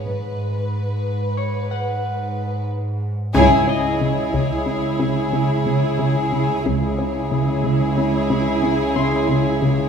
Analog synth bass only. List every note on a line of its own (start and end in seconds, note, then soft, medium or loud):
3.34 3.54 C#3 loud
3.67 3.87 C#4 soft
4.01 4.21 C#3 soft
4.34 4.54 C#3 soft
4.66 4.86 C#4 soft
4.99 5.19 C#3 medium
5.33 5.53 C#3 soft
5.66 5.86 C#3 soft
5.99 6.19 C#3 medium
6.33 6.52 C#3 soft
6.66 6.85 C#3 medium
6.98 7.18 C#4 soft
7.31 7.51 C#3 medium
7.64 7.84 C#3 soft
7.97 8.17 C#4 soft
8.30 8.50 C#3 medium
8.63 8.83 C#3 medium
8.96 9.16 C#3 soft
9.29 9.48 C#3 medium
9.62 9.82 C#3 medium